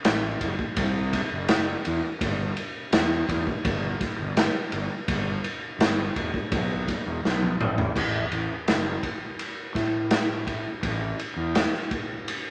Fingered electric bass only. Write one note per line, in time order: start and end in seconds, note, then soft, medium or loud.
0.05 0.34 A1 loud
0.40 0.55 F#1 medium
0.77 1.20 C2 medium
1.32 1.74 F#1 medium
1.86 2.00 E2 medium
2.21 2.49 G1 loud
2.93 3.21 E2 loud
3.28 3.43 E2 medium
3.65 3.93 G1 loud
4.19 4.47 G1 medium
4.72 4.87 G1 medium
5.08 5.37 G1 medium
5.79 6.08 G1 loud
6.16 6.30 E1 medium
6.52 6.95 B1 medium
7.06 7.20 E1 medium
7.24 7.56 B1 medium
7.60 7.92 A1 medium
7.95 8.24 A1 medium
8.31 8.46 A1 medium
8.68 8.97 F#1 medium
9.75 10.61 A2 medium
10.83 11.12 A1 loud
11.36 11.66 E2 medium